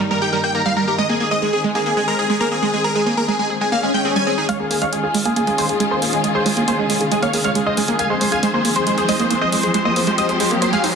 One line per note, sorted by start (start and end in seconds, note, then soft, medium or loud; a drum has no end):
0.00 0.95 G2 medium
0.00 4.45 D#3 medium
0.00 0.95 G3 medium
0.00 0.95 A#3 medium
0.00 0.97 D#4 medium
0.11 0.18 G3 medium
0.11 0.18 A#4 medium
0.22 0.25 G4 medium
0.22 0.29 G5 medium
0.33 0.38 G3 loud
0.33 0.40 A#4 medium
0.44 0.49 A#3 loud
0.44 0.51 G5 medium
0.55 0.58 A#3 medium
0.55 0.62 A#4 medium
0.66 0.69 G3 loud
0.66 0.73 F5 medium
0.77 0.84 G3 medium
0.77 0.84 A#4 medium
0.87 0.91 G4 medium
0.87 0.95 A#4 medium
0.98 4.45 G#3 medium
0.98 1.04 G#3 loud
0.98 4.45 C4 medium
0.98 4.45 G#4 medium
0.98 1.06 D#5 loud
1.09 1.14 A#3 loud
1.09 1.16 G#4 medium
1.20 1.23 A#3 medium
1.20 1.27 G#4 medium
1.31 1.34 G#3 medium
1.31 1.38 D#5 medium
1.42 1.50 G#3 medium
1.42 1.49 G#4 medium
1.53 1.60 G#4 medium
1.53 1.56 G#4 medium
1.64 1.69 G#3 loud
1.75 1.80 A#3 loud
1.75 1.82 G#4 medium
1.86 1.89 A#3 medium
1.86 1.93 G#4 medium
1.97 2.00 G#3 loud
1.97 2.04 G#4 medium
2.08 2.16 G#3 medium
2.08 2.15 A#4 medium
2.19 2.26 G#4 medium
2.19 2.22 G#4 medium
2.30 2.35 G#3 loud
2.30 2.37 G#4 medium
2.41 2.46 A#3 loud
2.41 2.48 A#4 medium
2.52 2.55 A#3 medium
2.52 2.59 G#4 medium
2.63 2.66 G#3 loud
2.63 2.70 G#4 medium
2.73 2.81 G#3 medium
2.73 2.81 G#4 medium
2.84 2.88 G#4 medium
2.84 2.92 A#4 medium
2.95 3.01 G#3 loud
2.95 3.03 G#4 medium
3.06 3.12 A#3 loud
3.06 3.14 G#4 medium
3.17 3.20 A#3 medium
3.17 3.25 A#4 medium
3.28 3.31 G#3 loud
3.28 3.35 G#4 medium
3.39 3.47 G#3 medium
3.39 3.46 G#4 medium
3.50 3.53 G#4 medium
3.61 3.66 G#3 loud
3.61 3.68 G#4 medium
3.61 swell medium
3.72 3.77 A#3 loud
3.72 3.79 F5 medium
3.83 3.88 G#3 medium
3.83 3.90 G#4 medium
3.94 3.99 G#3 medium
3.94 4.01 G5 medium
4.05 4.10 C4 loud
4.05 4.12 G#4 medium
4.16 4.21 G3 medium
4.16 4.23 G#5 medium
4.27 4.30 C4 medium
4.27 4.34 G#4 medium
4.38 4.43 D#4 medium
4.38 4.45 G#4 medium
4.49 7.96 D#3 medium
4.49 10.95 G#3 medium
4.49 4.54 G#3 loud
4.49 7.96 C#4 medium
4.49 7.96 F4 medium
4.49 4.56 C#5 medium
4.49 4.56 F5 loud
4.49 4.56 F6 medium
4.49 closed hi-hat medium
4.49 riser medium
4.60 4.65 A#3 loud
4.60 4.67 G#4 medium
4.60 4.67 G#5 medium
4.71 4.74 A#3 medium
4.71 4.78 G#4 medium
4.71 4.78 G#5 medium
4.71 open hi-hat loud
4.82 4.85 G#3 loud
4.82 4.89 C#5 medium
4.82 4.89 F5 medium
4.82 4.89 F6 loud
4.82 closed hi-hat medium
4.93 5.00 G#3 medium
4.93 5.00 G#4 medium
4.93 5.00 G#5 medium
4.93 closed hi-hat medium
5.03 5.11 G#4 medium
5.03 5.07 G#4 medium
5.03 5.11 G#5 medium
5.14 5.20 G#3 loud
5.14 open hi-hat loud
5.25 5.30 A#3 loud
5.25 5.33 G#4 medium
5.25 5.33 G#5 medium
5.25 closed hi-hat medium
5.36 5.39 A#3 medium
5.36 5.43 G#4 medium
5.36 5.44 G#5 medium
5.36 closed hi-hat medium
5.47 5.50 G#3 loud
5.47 5.54 G#4 medium
5.47 5.55 G#5 medium
5.47 closed hi-hat soft
5.58 5.66 G#3 medium
5.58 5.65 G#4 medium
5.58 5.65 C5 medium
5.58 5.65 C6 medium
5.58 open hi-hat loud
5.69 5.72 G#4 medium
5.69 5.76 G#4 medium
5.69 5.76 G#5 medium
5.69 closed hi-hat medium
5.80 5.85 G#3 loud
5.80 5.87 G#4 medium
5.80 5.87 G#5 medium
5.80 closed hi-hat medium
5.91 5.96 A#3 loud
5.91 5.98 G#4 medium
5.91 5.98 C5 medium
5.91 5.98 C6 medium
6.02 6.05 A#3 medium
6.02 6.09 G#4 medium
6.02 6.09 G#5 medium
6.02 open hi-hat loud
6.13 6.16 G#3 loud
6.13 6.20 G#4 medium
6.13 6.20 G#5 medium
6.13 closed hi-hat medium
6.24 6.32 G#3 medium
6.24 6.31 G#4 medium
6.24 6.31 G#5 medium
6.24 closed hi-hat medium
6.35 6.38 G#4 medium
6.35 6.42 G#4 medium
6.35 6.42 C5 medium
6.35 6.42 C6 medium
6.46 6.51 G#3 loud
6.46 6.53 G#4 medium
6.46 6.53 G#5 medium
6.46 open hi-hat loud
6.57 6.62 A#3 loud
6.57 6.64 G#4 medium
6.57 6.64 G#5 medium
6.57 closed hi-hat medium
6.68 6.71 A#3 medium
6.68 6.75 G#4 medium
6.68 6.75 C5 medium
6.68 6.75 C6 medium
6.68 closed hi-hat medium
6.79 6.82 G#3 loud
6.79 6.86 G#4 medium
6.79 6.86 G#5 medium
6.90 6.97 G#3 medium
6.90 6.97 G#4 medium
6.90 6.97 G#5 medium
6.90 open hi-hat loud
7.01 7.04 G#4 medium
7.01 closed hi-hat medium
7.12 7.17 G#3 loud
7.12 7.19 G#4 medium
7.12 7.19 G#5 medium
7.12 closed hi-hat medium
7.22 7.28 A#3 loud
7.22 7.30 C#5 medium
7.22 7.30 F5 medium
7.22 7.30 F6 medium
7.22 closed hi-hat soft
7.33 7.37 A#3 medium
7.33 7.41 G#4 medium
7.33 7.41 G#5 medium
7.33 open hi-hat loud
7.44 7.48 G#3 loud
7.44 7.52 C#5 medium
7.44 7.52 F5 medium
7.44 7.51 F6 medium
7.44 closed hi-hat medium
7.55 7.63 G#3 medium
7.55 7.63 G#4 medium
7.55 7.62 G#5 medium
7.55 closed hi-hat medium
7.66 7.69 G#4 medium
7.66 7.74 C5 medium
7.66 7.74 D#5 medium
7.66 7.73 D#6 medium
7.77 7.82 G#3 loud
7.77 7.84 G#4 medium
7.77 7.84 G#5 medium
7.77 open hi-hat loud
7.88 7.93 A#3 loud
7.88 7.95 G#4 medium
7.88 7.95 G#5 medium
7.88 closed hi-hat medium
7.99 10.95 F3 medium
7.99 8.02 A#3 medium
7.99 10.95 C4 medium
7.99 9.72 G#4 medium
7.99 8.06 F5 medium
7.99 8.06 G#5 loud
7.99 8.06 G#6 medium
7.99 closed hi-hat medium
8.10 8.13 G#3 loud
8.10 8.17 C5 medium
8.10 8.17 C6 medium
8.21 8.29 G#3 medium
8.21 8.28 C5 medium
8.21 8.28 C6 medium
8.21 open hi-hat loud
8.32 8.35 G#4 medium
8.32 8.39 F5 medium
8.32 8.39 G#5 medium
8.32 8.39 G#6 loud
8.32 closed hi-hat soft
8.43 8.48 G#3 loud
8.43 8.50 C5 medium
8.43 8.50 C6 medium
8.43 closed hi-hat medium
8.54 8.59 A#3 loud
8.54 8.61 C5 medium
8.54 8.61 C6 medium
8.65 8.68 A#3 medium
8.65 open hi-hat loud
8.76 8.79 G#3 loud
8.76 8.83 C5 medium
8.76 8.83 C6 medium
8.76 closed hi-hat medium
8.87 8.94 G#3 medium
8.87 8.94 C5 medium
8.87 8.94 C6 medium
8.87 closed hi-hat medium
8.98 9.01 G#4 medium
8.98 9.05 C5 medium
8.98 9.05 C6 medium
8.98 closed hi-hat soft
9.09 9.14 G#3 loud
9.09 9.16 C5 medium
9.09 9.16 D#5 medium
9.09 9.16 D#6 medium
9.09 open hi-hat loud
9.20 9.25 A#3 loud
9.20 9.27 C5 medium
9.20 9.27 C6 medium
9.20 closed hi-hat soft
9.31 9.34 A#3 medium
9.31 9.38 C5 medium
9.31 9.38 C6 medium
9.31 closed hi-hat medium
9.41 9.45 G#3 loud
9.41 9.49 C5 medium
9.41 9.49 D#5 medium
9.41 9.49 D#6 medium
9.52 9.60 G#3 medium
9.52 9.60 C5 medium
9.52 9.60 C6 medium
9.52 open hi-hat loud
9.63 9.66 G#4 medium
9.63 9.70 C5 medium
9.63 9.71 C6 medium
9.63 closed hi-hat soft
9.74 9.79 G#3 loud
9.74 10.95 G4 medium
9.74 9.81 C5 medium
9.74 9.82 C6 medium
9.74 closed hi-hat medium
9.85 9.90 A#3 loud
9.85 9.92 C5 medium
9.85 9.92 D#5 medium
9.85 9.92 D#6 medium
9.96 9.99 A#3 medium
9.96 10.03 C5 medium
9.96 10.03 C6 medium
9.96 open hi-hat loud
10.07 10.10 G#3 loud
10.07 10.14 C5 medium
10.07 10.14 C6 medium
10.07 closed hi-hat soft
10.18 10.26 G#3 medium
10.18 10.25 C5 medium
10.18 10.25 D#5 medium
10.18 10.25 D#6 medium
10.18 closed hi-hat medium
10.29 10.32 G#4 medium
10.29 10.36 C5 medium
10.29 10.36 C6 medium
10.29 closed hi-hat soft
10.40 10.45 G#3 loud
10.40 10.47 C5 medium
10.40 10.47 C6 medium
10.40 open hi-hat loud
10.51 10.56 A#3 loud
10.51 closed hi-hat soft
10.62 10.65 A#3 medium
10.62 10.69 C5 medium
10.62 10.69 C6 medium
10.62 closed hi-hat medium
10.73 10.76 G#3 loud
10.73 10.80 G#4 medium
10.73 10.80 F5 medium
10.73 10.80 F6 medium
10.73 closed hi-hat soft
10.84 10.89 D#4 loud
10.84 10.91 C5 medium
10.84 10.91 C6 medium
10.84 open hi-hat loud